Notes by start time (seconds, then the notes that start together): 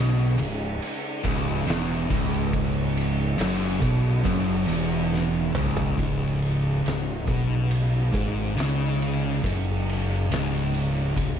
Already playing: B1 B2 C#3 G#3 D#4
0.38 C#1 C#2, ride
0.82 ride
1.24 C#1 C#2, kick, ride
1.67 E1 E2, snare, ride
2.10 C#1 C#2, kick, ride
2.53 kick, ride
2.97 ride
3.38 F#1 F#2, snare, ride
3.81 B1 B2, kick, ride
4.25 F#1 F#2, kick, ride
4.67 E1 E2, ride
5.14 snare
5.54 C#1 C#2, mid tom
5.77 floor tom
5.96 C#1 C#2 C#3 G#3 D#4, kick, ride
6.42 ride
6.84 C#1 C#2, ride
6.88 snare
7.26 B1 B2, kick, ride
7.71 ride
8.12 G#1 G#2, kick, ride
8.56 C#2 C#3, ride
8.60 snare
9.02 ride
9.43 F#1 F#2, kick, ride
9.89 ride
10.30 C#1 C#2, snare, ride
10.74 ride
11.17 C#1 C#2, kick, ride